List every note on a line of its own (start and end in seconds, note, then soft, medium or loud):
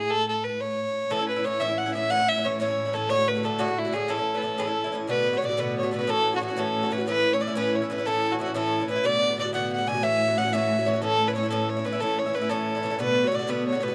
0.00 1.09 A2 medium
0.00 0.12 G#4 medium
0.10 0.28 A4 loud
0.29 0.45 A4 medium
0.44 0.62 B4 medium
0.60 1.12 C#5 medium
1.10 5.09 A2 medium
1.10 1.19 A2 medium
1.10 1.20 E3 medium
1.10 1.19 C#4 medium
1.10 1.18 E4 medium
1.10 1.28 A4 loud
1.19 1.38 E3 soft
1.19 1.37 C#4 soft
1.19 1.35 E4 soft
1.29 1.46 B4 medium
1.36 1.44 E3 soft
1.36 1.45 C#4 soft
1.36 1.44 E4 soft
1.44 1.59 A2 soft
1.44 1.59 E3 soft
1.44 1.60 C#4 medium
1.44 1.61 E4 medium
1.44 1.62 C#5 medium
1.60 1.69 A2 medium
1.60 1.69 E3 medium
1.60 1.69 C#4 medium
1.60 1.67 E4 medium
1.60 1.80 E5 medium
1.69 1.87 E3 soft
1.69 1.86 C#4 soft
1.69 1.85 E4 soft
1.78 1.94 F#5 medium
1.86 1.94 E3 soft
1.86 1.94 C#4 soft
1.86 1.94 E4 soft
1.94 2.09 A2 medium
1.94 2.09 E3 medium
1.94 2.10 C#4 medium
1.94 2.11 E4 medium
1.94 2.12 E5 loud
2.10 2.19 A2 medium
2.10 2.19 E3 medium
2.10 2.19 C#4 medium
2.10 2.18 E4 medium
2.10 2.30 F#5 loud
2.19 2.37 E3 soft
2.19 2.37 C#4 soft
2.19 2.35 E4 soft
2.29 2.46 E5 loud
2.36 2.44 E3 soft
2.36 2.45 C#4 medium
2.36 2.44 E4 soft
2.44 2.59 A2 medium
2.44 2.59 E3 soft
2.44 2.60 C#4 medium
2.44 2.60 E4 soft
2.44 2.59 C#5 medium
2.60 2.69 A2 medium
2.60 2.69 E3 medium
2.60 2.69 C#4 medium
2.60 2.67 E4 medium
2.60 2.95 C#5 medium
2.68 2.87 E3 soft
2.68 2.86 C#4 soft
2.68 2.84 E4 soft
2.85 2.93 E3 soft
2.85 2.94 C#4 soft
2.85 2.93 E4 soft
2.93 3.08 A2 medium
2.93 3.10 E3 medium
2.93 3.10 C#4 medium
2.93 3.10 E4 medium
2.93 3.11 A4 medium
3.09 3.18 A2 medium
3.09 3.19 D3 medium
3.09 3.18 A3 medium
3.09 3.17 F#4 medium
3.09 3.30 C#5 loud
3.18 3.37 D3 soft
3.18 3.35 A3 soft
3.18 3.34 F#4 soft
3.28 3.46 B4 medium
3.35 3.43 D3 soft
3.35 3.44 A3 soft
3.35 3.43 F#4 soft
3.43 3.57 A2 soft
3.43 3.58 D3 medium
3.43 3.59 A3 medium
3.43 3.59 F#4 medium
3.43 3.61 A4 medium
3.59 3.68 A2 medium
3.59 3.68 D3 medium
3.59 3.68 A3 medium
3.59 3.80 F#4 medium
3.59 3.67 F#4 medium
3.68 3.86 D3 soft
3.68 3.85 A3 soft
3.68 3.84 F#4 soft
3.79 3.95 E4 medium
3.85 3.92 D3 soft
3.85 3.93 A3 soft
3.85 3.93 F#4 soft
3.93 4.07 A2 medium
3.93 4.08 D3 medium
3.93 4.09 A3 medium
3.93 4.10 F#4 medium
3.93 4.11 G#4 medium
4.08 4.18 A2 medium
4.08 4.18 E3 medium
4.08 4.18 C#4 medium
4.08 4.16 E4 medium
4.08 4.35 A4 medium
4.17 4.36 E3 soft
4.17 4.34 C#4 soft
4.17 4.33 E4 soft
4.34 4.42 E3 soft
4.34 4.43 C#4 soft
4.34 4.42 E4 soft
4.34 4.61 A4 medium
4.34 4.39 B4 medium
4.42 4.57 A2 medium
4.42 4.57 E3 soft
4.42 4.58 C#4 medium
4.42 4.58 E4 soft
4.58 4.67 A2 medium
4.58 4.68 E3 medium
4.58 4.67 C#4 medium
4.58 4.66 E4 medium
4.58 4.65 G#4 medium
4.64 4.83 E4 soft
4.64 4.92 A4 medium
4.69 4.86 E3 soft
4.69 4.84 C#4 soft
4.84 4.92 E3 soft
4.84 4.93 C#4 soft
4.84 4.92 E4 medium
4.92 5.07 A2 soft
4.92 5.08 E3 medium
4.92 5.09 C#4 medium
4.92 5.09 E4 medium
5.07 9.05 A2 medium
5.07 5.34 B2 medium
5.07 5.34 D3 medium
5.07 5.34 B3 medium
5.07 5.32 F#4 medium
5.07 5.38 B4 loud
5.33 5.41 D3 soft
5.33 5.42 B3 soft
5.33 5.42 F#4 soft
5.33 5.46 C#5 medium
5.41 5.49 B2 soft
5.41 5.50 D3 medium
5.41 5.50 B3 soft
5.41 5.48 F#4 medium
5.41 5.62 D5 medium
5.49 5.57 D3 soft
5.49 5.57 B3 medium
5.49 5.57 F#4 soft
5.57 5.84 B2 medium
5.57 5.84 D3 medium
5.57 5.83 B3 medium
5.57 5.82 F#4 medium
5.57 5.77 B4 medium
5.78 5.92 C#5 medium
5.83 5.91 D3 soft
5.83 5.92 B3 soft
5.83 5.91 F#4 medium
5.91 5.99 B2 soft
5.91 6.00 D3 medium
5.91 5.99 B3 medium
5.91 5.97 F#4 medium
5.91 6.11 B4 medium
5.99 6.07 D3 soft
5.99 6.08 B3 soft
5.99 6.07 F#4 soft
6.07 6.33 A2 medium
6.07 6.34 E3 medium
6.07 6.33 C#4 medium
6.07 6.32 F#4 medium
6.07 6.35 A4 loud
6.33 6.40 E3 soft
6.33 6.41 C#4 soft
6.33 6.41 F#4 soft
6.33 6.42 F#4 medium
6.40 6.49 A2 soft
6.40 6.49 E3 soft
6.40 6.49 C#4 medium
6.40 6.61 F#4 medium
6.40 6.47 F#4 medium
6.48 6.56 E3 soft
6.48 6.57 C#4 soft
6.48 6.57 F#4 soft
6.57 6.83 A2 medium
6.57 6.83 E3 medium
6.57 6.83 C#4 medium
6.57 6.82 F#4 medium
6.57 6.94 A4 medium
6.83 6.91 E3 soft
6.83 6.91 C#4 soft
6.83 6.91 F#4 medium
6.91 6.99 A2 medium
6.91 6.99 E3 medium
6.91 6.99 C#4 medium
6.91 6.97 F#4 medium
6.91 7.06 B4 medium
6.98 7.06 E3 soft
6.98 7.07 C#4 soft
6.98 7.06 F#4 soft
7.07 7.33 A2 medium
7.07 7.33 E3 medium
7.07 7.32 C#4 medium
7.07 7.31 E4 medium
7.07 7.35 B4 loud
7.32 7.40 E3 soft
7.32 7.41 C#4 soft
7.32 7.40 E4 soft
7.32 7.43 C#5 medium
7.40 7.48 A2 soft
7.40 7.48 E3 medium
7.40 7.48 C#4 medium
7.40 7.46 E4 medium
7.40 7.57 D5 medium
7.47 7.55 E3 soft
7.47 7.56 C#4 soft
7.47 7.56 E4 medium
7.55 7.82 A2 medium
7.55 7.82 E3 medium
7.55 7.82 C#4 medium
7.55 7.81 E4 medium
7.55 7.77 B4 medium
7.75 7.90 C#5 medium
7.82 7.90 E3 soft
7.82 7.90 C#4 soft
7.82 7.90 E4 soft
7.90 7.98 A2 medium
7.90 7.98 E3 soft
7.90 7.98 C#4 medium
7.90 7.97 E4 medium
7.90 8.08 B4 medium
7.98 8.05 E3 soft
7.98 8.06 C#4 soft
7.98 8.06 E4 medium
8.06 8.32 A2 medium
8.06 8.32 E3 medium
8.06 8.32 C#4 medium
8.06 8.30 E4 medium
8.06 8.34 A4 loud
8.31 8.39 E3 soft
8.31 8.40 C#4 soft
8.31 8.39 E4 soft
8.31 8.40 F#4 medium
8.39 8.47 A2 soft
8.39 8.47 E3 medium
8.39 8.46 C#4 medium
8.39 8.45 E4 medium
8.39 8.55 F#4 medium
8.46 8.54 E3 soft
8.46 8.54 C#4 soft
8.46 8.54 E4 soft
8.55 8.81 A2 medium
8.55 8.81 E3 medium
8.55 8.80 C#4 medium
8.55 8.79 E4 medium
8.55 8.87 A4 medium
8.80 8.88 E3 soft
8.80 8.89 C#4 soft
8.80 8.88 E4 soft
8.88 8.96 A2 soft
8.88 8.97 E3 medium
8.88 8.96 C#4 medium
8.88 8.94 E4 medium
8.88 9.07 B4 medium
8.96 9.04 E3 soft
8.96 9.05 C#4 soft
8.96 9.04 E4 soft
9.04 12.98 A2 medium
9.04 9.30 B2 medium
9.04 9.30 D3 medium
9.04 9.30 B3 medium
9.04 9.28 F#4 medium
9.04 9.39 D5 loud
9.29 9.36 D3 soft
9.29 9.38 B3 soft
9.29 9.38 F#4 medium
9.37 9.45 B2 soft
9.37 9.46 D3 soft
9.37 9.45 B3 medium
9.37 9.43 F#4 medium
9.37 9.53 D5 medium
9.45 9.53 D3 soft
9.45 9.53 B3 soft
9.45 9.53 F#4 medium
9.53 9.79 B2 medium
9.53 9.80 D3 medium
9.53 9.79 B3 medium
9.53 9.77 F#4 medium
9.53 9.71 F#5 medium
9.73 9.89 F#5 medium
9.78 9.86 D3 soft
9.78 9.87 B3 soft
9.78 9.87 F#4 medium
9.87 9.95 B2 medium
9.87 9.95 D3 medium
9.87 9.94 B3 medium
9.87 9.93 F#4 medium
9.87 10.05 G#5 medium
9.94 10.02 D3 soft
9.94 10.03 B3 soft
9.94 10.03 F#4 medium
10.02 10.28 A2 medium
10.02 10.29 E3 medium
10.02 10.28 C#4 medium
10.02 10.27 F#4 medium
10.02 10.39 E5 loud
10.28 10.36 E3 soft
10.28 10.37 C#4 soft
10.28 10.36 F#4 soft
10.36 10.44 A2 soft
10.36 10.45 E3 medium
10.36 10.45 C#4 medium
10.36 10.43 F#4 medium
10.36 10.54 F#5 medium
10.44 10.52 E3 soft
10.44 10.53 C#4 soft
10.44 10.52 F#4 soft
10.53 10.78 A2 medium
10.53 10.79 E3 medium
10.53 10.78 C#4 medium
10.53 10.77 F#4 medium
10.53 10.88 E5 medium
10.78 10.85 E3 soft
10.78 10.86 C#4 soft
10.78 10.86 F#4 soft
10.85 10.93 A2 medium
10.85 10.94 E3 soft
10.85 10.93 C#4 medium
10.85 10.92 F#4 medium
10.85 11.02 C#5 medium
10.93 11.01 E3 soft
10.93 11.02 C#4 soft
10.93 11.01 F#4 soft
11.02 11.28 A2 medium
11.02 11.28 E3 medium
11.02 11.27 C#4 medium
11.02 11.26 E4 medium
11.02 11.30 A4 loud
11.27 11.35 E3 soft
11.27 11.35 C#4 soft
11.27 11.35 E4 soft
11.27 11.35 B4 medium
11.35 11.43 A2 soft
11.35 11.43 E3 medium
11.35 11.43 C#4 medium
11.35 11.42 E4 medium
11.35 11.50 C#5 medium
11.43 11.50 E3 soft
11.43 11.51 C#4 soft
11.43 11.51 E4 medium
11.51 11.77 A2 medium
11.51 11.77 E3 medium
11.51 11.77 C#4 medium
11.51 11.75 E4 medium
11.51 11.71 A4 medium
11.69 11.86 C#5 medium
11.77 11.85 E3 soft
11.77 11.85 C#4 soft
11.77 11.84 E4 medium
11.84 11.92 A2 medium
11.84 11.93 E3 soft
11.84 11.93 C#4 medium
11.84 11.91 E4 medium
11.84 12.02 B4 medium
11.93 12.00 E3 soft
11.93 12.00 C#4 soft
11.93 12.00 E4 medium
12.00 12.26 A2 medium
12.00 12.26 E3 medium
12.00 12.26 C#4 medium
12.00 12.25 E4 medium
12.00 12.20 A4 medium
12.19 12.36 C#5 medium
12.26 12.33 E3 soft
12.26 12.34 C#4 soft
12.26 12.34 E4 soft
12.33 12.41 A2 soft
12.33 12.42 E3 soft
12.33 12.42 C#4 medium
12.33 12.40 E4 medium
12.33 12.51 B4 medium
12.42 12.49 E3 soft
12.42 12.50 C#4 soft
12.42 12.49 E4 medium
12.49 12.75 A2 medium
12.49 12.76 E3 medium
12.49 12.75 C#4 medium
12.49 12.74 E4 medium
12.49 12.98 A4 medium
12.75 12.83 E3 soft
12.75 12.83 C#4 soft
12.75 12.83 E4 soft
12.83 12.91 A2 medium
12.83 12.91 E3 medium
12.83 12.90 C#4 medium
12.83 12.89 E4 medium
12.90 12.99 E3 soft
12.90 12.99 C#4 medium
12.90 12.98 E4 medium
12.99 13.95 A2 medium
12.99 13.24 B2 medium
12.99 13.25 D3 medium
12.99 13.25 B3 medium
12.99 13.23 F#4 medium
12.99 13.29 B4 loud
13.24 13.31 D3 soft
13.24 13.32 B3 soft
13.24 13.32 F#4 soft
13.24 13.36 C#5 medium
13.32 13.39 B2 medium
13.32 13.40 D3 medium
13.32 13.40 B3 medium
13.32 13.38 F#4 medium
13.32 13.52 D5 medium
13.39 13.47 D3 soft
13.39 13.47 B3 soft
13.39 13.47 F#4 medium
13.47 13.73 B2 medium
13.47 13.73 D3 medium
13.47 13.73 B3 medium
13.47 13.71 F#4 medium
13.47 13.67 B4 medium
13.67 13.85 C#5 medium
13.72 13.80 D3 soft
13.72 13.81 B3 soft
13.72 13.80 F#4 medium
13.81 13.88 B2 medium
13.81 13.89 D3 soft
13.81 13.88 B3 medium
13.81 13.87 F#4 medium
13.81 13.95 B4 medium
13.88 13.95 D3 soft
13.88 13.95 B3 soft
13.88 13.95 F#4 medium